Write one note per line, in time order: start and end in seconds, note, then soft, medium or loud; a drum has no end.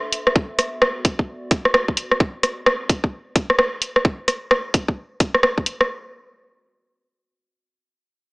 0.00 1.01 A4 medium
0.00 1.01 E5 medium
0.00 0.35 C6 medium
0.12 open hi-hat medium
0.27 cross-stick medium
0.35 1.97 B3 medium
0.35 kick loud
0.59 1.97 F#4 medium
0.59 cross-stick soft
0.59 open hi-hat medium
0.82 cross-stick loud
1.05 kick medium
1.05 open hi-hat medium
1.09 1.97 D5 medium
1.19 kick medium
1.51 kick loud
1.51 open hi-hat loud
1.65 cross-stick medium
1.74 cross-stick loud
1.88 kick medium
1.97 2.20 C4 medium
1.97 open hi-hat medium
2.10 2.20 G4 medium
2.10 2.20 D#5 medium
2.10 cross-stick medium
2.20 kick loud
2.43 cross-stick medium
2.43 open hi-hat loud
2.66 cross-stick loud
2.89 kick loud
2.89 open hi-hat medium
3.04 kick medium
3.36 kick loud
3.36 open hi-hat loud
3.50 cross-stick medium
3.59 cross-stick loud
3.82 open hi-hat medium
3.96 cross-stick medium
4.05 kick loud
4.28 cross-stick soft
4.28 open hi-hat medium
4.51 cross-stick loud
4.74 kick medium
4.74 open hi-hat medium
4.88 kick medium
5.20 kick medium
5.20 open hi-hat loud
5.34 cross-stick medium
5.43 cross-stick loud
5.58 kick medium
5.66 open hi-hat medium
5.81 cross-stick medium